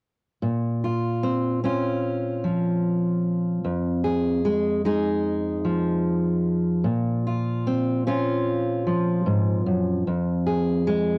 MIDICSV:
0, 0, Header, 1, 2, 480
1, 0, Start_track
1, 0, Key_signature, -5, "minor"
1, 0, Tempo, 802139
1, 258, Time_signature, 4, 2, 24, 8
1, 6691, End_track
2, 0, Start_track
2, 0, Title_t, "Steel-string acoustic guitar"
2, 0, Program_c, 0, 25
2, 252, Note_on_c, 0, 46, 46
2, 503, Note_on_c, 0, 65, 35
2, 738, Note_on_c, 0, 60, 40
2, 977, Note_off_c, 0, 60, 0
2, 980, Note_on_c, 0, 60, 35
2, 983, Note_on_c, 0, 61, 36
2, 987, Note_off_c, 0, 65, 0
2, 989, Note_on_c, 0, 65, 38
2, 1459, Note_on_c, 0, 53, 35
2, 2153, Note_off_c, 0, 61, 0
2, 2176, Note_off_c, 0, 46, 0
2, 2181, Note_on_c, 0, 41, 43
2, 2415, Note_off_c, 0, 65, 0
2, 2418, Note_on_c, 0, 68, 39
2, 2660, Note_off_c, 0, 60, 0
2, 2662, Note_on_c, 0, 56, 41
2, 2895, Note_off_c, 0, 56, 0
2, 2899, Note_off_c, 0, 68, 0
2, 2902, Note_on_c, 0, 56, 37
2, 2905, Note_on_c, 0, 63, 36
2, 2909, Note_on_c, 0, 68, 45
2, 2923, Note_off_c, 0, 53, 0
2, 3379, Note_on_c, 0, 53, 36
2, 4073, Note_off_c, 0, 63, 0
2, 4076, Note_off_c, 0, 68, 0
2, 4093, Note_on_c, 0, 46, 46
2, 4100, Note_off_c, 0, 41, 0
2, 4101, Note_off_c, 0, 56, 0
2, 4349, Note_on_c, 0, 65, 37
2, 4589, Note_on_c, 0, 60, 39
2, 4825, Note_off_c, 0, 60, 0
2, 4827, Note_on_c, 0, 60, 37
2, 4830, Note_on_c, 0, 61, 38
2, 4832, Note_off_c, 0, 65, 0
2, 4835, Note_on_c, 0, 65, 43
2, 5303, Note_off_c, 0, 53, 0
2, 5305, Note_on_c, 0, 53, 37
2, 5541, Note_on_c, 0, 44, 39
2, 5780, Note_off_c, 0, 44, 0
2, 5782, Note_on_c, 0, 42, 38
2, 5995, Note_off_c, 0, 61, 0
2, 6016, Note_off_c, 0, 46, 0
2, 6021, Note_off_c, 0, 42, 0
2, 6027, Note_on_c, 0, 41, 45
2, 6260, Note_off_c, 0, 65, 0
2, 6262, Note_on_c, 0, 68, 38
2, 6502, Note_off_c, 0, 60, 0
2, 6505, Note_on_c, 0, 56, 43
2, 6691, Note_off_c, 0, 41, 0
2, 6691, Note_off_c, 0, 53, 0
2, 6691, Note_off_c, 0, 56, 0
2, 6691, Note_off_c, 0, 68, 0
2, 6691, End_track
0, 0, End_of_file